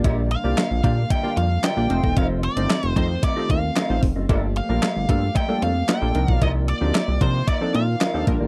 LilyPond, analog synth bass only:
\new Staff \with { instrumentName = "Analog synth bass" } { \clef bass \time 4/4 \key c \dorian \tempo 4 = 113 bes,,8. c,16 r16 bes,,16 bes,8 r8 f,8 r16 bes,,16 f,,16 e,,16 | f,,8. g,,16 r16 f,,16 f,8 r8 ees,8 r16 a,,16 f,,16 fis,,16 | g,,8. bes,,16 r16 g,,16 g,8 r8 f,8 r16 bes,,16 c,16 b,,16 | c,8. d,16 r16 c,16 c8 r8 bes,8 r16 ees,16 bes,,16 a,,16 | }